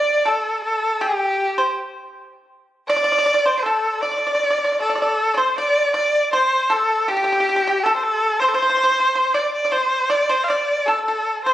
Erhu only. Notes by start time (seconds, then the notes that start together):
Already playing: D5
0.28 A4
0.64 A4
1.01 G4
2.89 D5
3.59 A4 C5
4.01 D5
4.82 A4
5.00 A4
5.39 C5
5.58 D5
5.96 D5
6.33 C5
6.72 A4
7.10 G4
7.84 A4
7.96 C5
8.03 A4
8.40 C5
8.49 A4
8.55 C5
9.34 D5
9.54 D5
9.72 C5
10.11 D5
10.30 C5
10.44 F5
10.48 D5
10.86 A4
11.05 A4
11.45 C5